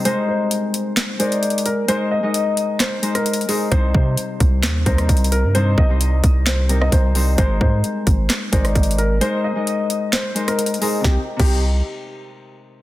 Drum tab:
CC |------------------------------------------------|------------------------------------------------|------------------------------------------------|------------------------------------------------|
HH |x-----------x-----x-----x-----x--x--x-x-x-x-----|x-----------x-----x-----x-----x--x--x-x-x-o-----|x-----------x-----x-----x-----x--x--x-x-x-x-----|x-----------x-----x-----x-----x-----x-----o-----|
CP |------------------------x-----------------------|------------------------x-----------------------|------------------------x-----------------------|------------------------x-----------------------|
SD |------------------------o-----------------------|------------------------o--------r--------------|------------------------o--------r--------------|------------------------o--------r--------------|
BD |------------------------------------------------|------------------------------------------------|o-----o-----------o-----------o-----o-----------|------o-----------o-----------------o-----------|

CC |------------------------------------------------|------------------------------------------------|---------x--------------------------------------|
HH |x-----------x-----x-----x-----x--x--x-x-x-x-----|x-----------x-----x-----x-----x--x--x-x-x-o-----|------------------------------------------------|
CP |------------------------x-----------------------|------------------------x-----------------------|------------------------------------------------|
SD |------------------------o--------r--------------|------------------------o--------r--------------|o-----------------------------------------------|
BD |o-----o-----------o-----------o-----o-----------|------------------------------------------------|o--------o--------------------------------------|